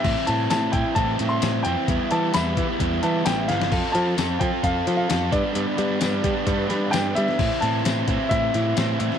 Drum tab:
CC |x---------------|----------------|x---------------|----------------|
HH |--x-x-x-x-x-x-x-|x-x-x-x-x-x-x-x-|--x-x-x-x-x-x-x-|x-x-x-x-x-x-x-x-|
TB |----x-------x---|----x-------x---|----x-------x---|----x-------x---|
SD |----o-----o-o---|----o-------o-oo|----o-----o-o---|----o-----o-o--o|
BD |o-----o-o-------|o-----o-o-------|o-----o-o-----o-|------o-o-------|

CC |x---------------|
HH |--x-x-x-x-x-x-x-|
TB |----x-------x---|
SD |----o-----o-o--o|
BD |o-----o-o-------|